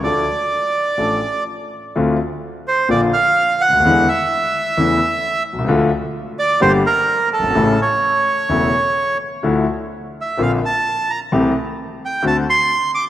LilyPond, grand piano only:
\new Staff \with { instrumentName = "Grand piano" } { \clef bass \time 4/4 \key d \minor \tempo 4 = 129 <d, d f a d' a'>8 r4. <a,, a, f a d' a'>8 r4. | <d, d a c' f'>8 r4. <bes,, bes, d f bes f'>8 r4 r32 cis,32 d,32 ees,32 | <e, d e gis b e'>8 r4. <e, cis e a e'>8 r4 r32 b,,32 c,32 cis,32 | <d, d f a f'>8 r4. <g,, g, d g bes g'>8 r4 r32 fis,,32 g,,32 gis,,32 |
<a,, a, cis e a e'>8 r4. <e,, e, cis e a e'>8 r4. | <d, d f a e'>8 r4. <bes,, bes, d bes c' f'>8 r4. | <c, c e a c' g'>8 r4. <d, d a c' fis'>8 r4. | }